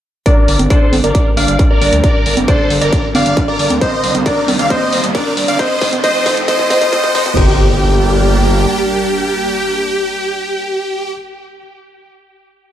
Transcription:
0.26 D3 G3 A#3 D4 A#4 D5, kick, closed hi-hat, riser
0.48 G1, open hi-hat
0.59 G1, closed hi-hat, high conga
0.70 D4 A4 C5 D5, kick, closed hi-hat
0.93 G1, open hi-hat, high conga
1.04 G1 A#4 D5, closed hi-hat
1.15 kick, closed hi-hat
1.37 G1 D4 D5 F5, open hi-hat
1.48 G1, closed hi-hat
1.59 kick, closed hi-hat
1.70 A#4 D5
1.81 G1 D4 D5, open hi-hat
1.92 D2, closed hi-hat
2.04 A#4 D5, kick, closed hi-hat
2.26 G1, open hi-hat
2.37 G1, closed hi-hat, high conga
2.48 D4 A4 C5 D5, kick, closed hi-hat
2.70 G1, open hi-hat
2.81 G1 A#4 D5, closed hi-hat
2.93 kick, closed hi-hat
3.15 G1 D4 D5 F5, open hi-hat, high conga
3.26 G1, closed hi-hat
3.37 kick, closed hi-hat
3.48 A#4 D5
3.59 G1, open hi-hat
3.70 D2, closed hi-hat, high conga
3.81 C3 D#3 G3 C4 C5 D#5, kick, closed hi-hat
4.04 C2, open hi-hat
4.15 C2, closed hi-hat, high conga
4.26 D4 A#4 D5, kick, closed hi-hat
4.48 C2, open hi-hat, high conga
4.59 C2 D5 F5, closed hi-hat
4.70 C4 C5 D#5, kick, closed hi-hat
4.93 C2, open hi-hat
5.04 C2, closed hi-hat
5.15 D4 A#4 D5, kick, closed hi-hat
5.37 C2, open hi-hat
5.48 G1 D5 F5, closed hi-hat
5.59 F3 A3 C4 C5 D#5, kick, closed hi-hat
5.81 F1, kick, open hi-hat
5.93 F1, closed hi-hat, high conga
6.04 C4 C5 D#5, kick, closed hi-hat
6.26 F1, kick, open hi-hat
6.37 F1, closed hi-hat
6.48 C4 C5 D#5, kick, closed hi-hat
6.59 kick
6.70 D#1 C4 C5 D#5, kick, open hi-hat, high conga
6.81 F1, kick, closed hi-hat
6.93 C4 C5 D#5, kick, closed hi-hat
7.04 kick
7.15 F1 C4 C5 D#5, kick, open hi-hat
7.26 F1, kick, closed hi-hat, high conga
7.37 G1 G3 A#3 D4 G4 A#4, kick, crash, impact

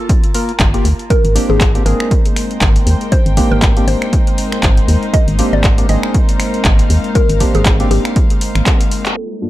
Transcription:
Already playing: A#3 F4 A5
0.09 kick, closed hi-hat
0.24 closed hi-hat
0.34 A#3 F4 A#4, open hi-hat
0.49 closed hi-hat
0.60 G1, kick, clap, closed hi-hat
0.74 A#3 F4 G4, closed hi-hat
0.85 D2, open hi-hat
0.99 closed hi-hat
1.10 G#3 A#3 C4 D#4 A#4, kick, closed hi-hat
1.24 G#1, closed hi-hat
1.35 A#3 C4 D4 G4, open hi-hat
1.44 C5
1.50 G#1 G#4
1.61 kick, clap, closed hi-hat
1.75 A#3 C4 D4 G4, closed hi-hat
1.86 G#1 A#3 C4 D4 G#4 A#4, open hi-hat
2.00 finger snap
2.11 kick, closed hi-hat
2.25 closed hi-hat
2.36 finger snap, open hi-hat
2.51 G5, closed hi-hat
2.61 G#1, kick, clap, closed hi-hat
2.76 closed hi-hat
2.87 D#2, open hi-hat
3.01 closed hi-hat
3.12 C5, kick, closed hi-hat
3.26 G#1, closed hi-hat
3.37 A#3 C4 D4 G4, kick, open hi-hat
3.51 G#1 A#4
3.62 kick, clap, closed hi-hat
3.77 A#3 C4 D4 G4, closed hi-hat
3.87 G#1 A#3 C4 D4 G4 C5, open hi-hat
4.02 finger snap, closed hi-hat
4.13 kick, closed hi-hat
4.27 closed hi-hat
4.38 open hi-hat
4.52 finger snap, closed hi-hat
4.63 G#1, kick, clap, closed hi-hat
4.77 closed hi-hat
4.88 D#2, open hi-hat
5.03 closed hi-hat
5.14 D#5, kick, closed hi-hat
5.28 G#1, closed hi-hat
5.37 A#3 C4 D4 G4 F5, open hi-hat
5.53 G#1 D5
5.64 kick, clap, closed hi-hat
5.78 A#3 C4 D4 G4, closed hi-hat
5.89 G#1 A#3 C4 D4 G#4 D#5, open hi-hat
6.03 finger snap
6.14 kick, closed hi-hat
6.29 closed hi-hat
6.40 finger snap, open hi-hat
6.54 closed hi-hat
6.65 G#1, kick, clap, closed hi-hat
6.79 closed hi-hat
6.90 D#2, open hi-hat
7.04 closed hi-hat
7.15 A#4, kick, closed hi-hat
7.29 G#1, closed hi-hat
7.40 A#3 C4 D4 G4, kick, open hi-hat
7.55 G#1 G#4, closed hi-hat
7.66 kick, clap, closed hi-hat
7.80 A#3 C4 D4 G4, closed hi-hat
7.91 G#1 A#3 C4 D4 G4, open hi-hat
8.05 finger snap, closed hi-hat
8.16 kick, closed hi-hat
8.30 closed hi-hat
8.41 open hi-hat
8.55 G#1, finger snap, closed hi-hat
8.66 kick, clap, closed hi-hat
8.81 closed hi-hat
8.91 open hi-hat
9.06 clap, closed hi-hat
9.17 G3 A#3 F4 A4 A5
9.33 G5
9.42 G2 A#3 D4 F4 A4

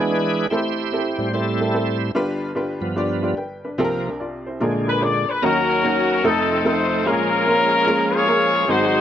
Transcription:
Already playing: E2 E3 G#3 D4 G#4 B4
0.09 B3 D4 E4 G#4
0.50 A1 A2 C4 E4 G4 A4 C5
0.92 C4 E4 G4 A4
1.18 A2 G3 C4
1.32 C4 E4 G4 A4 C5
1.60 C4 E4 G4 A4
1.73 C4 E4 G4 A4
2.15 G1 G2 D4 F4 G4 B4
2.55 D4 F4 G4 B4
2.81 G2 F3 B3
2.96 D4 F4 G4 D5
3.22 D4 F4 G4 D5
3.37 B4 G5
3.65 D4 B4
3.78 C2 C3 F3 A#3 C4 F4 G4 A4
3.84 A#4
4.06 D4 A#4
4.20 F4 D5
4.47 E4 C5
4.60 A#1 A#2 D3 G#3 D4 F4 G#4 A#4
4.87 D4 F4 G#4 A#4 B4
5.02 C#4 F4 G#4 A#4 D5
5.06 D4
5.30 B4
5.42 D#2 D#3 F#3 A#3 C#4 D#4 F#4 A#4
5.83 A#3 C#4 D#4 F#4 C#5
6.11 A#4
6.23 F1 F2 F3 A3 C4 D#4 F4 G4 A4
6.30 A4
6.51 A4
6.64 A3 C4 D#4 F4 A4 C5
7.05 A#1 A#2 F3 G#3 A#3 C#4 F4 G#4 A#4
7.46 G#3 A#3 C4 F4 A#4
7.52 C#4
7.86 G#3 A#3 C#4 F4 A#4
8.15 F4 G#4 C#5
8.27 G#3 A#3 C#4 F4 A#4
8.68 G#1 G#2 F#3 G#3 C4 D#4 F#4 G#4 C5

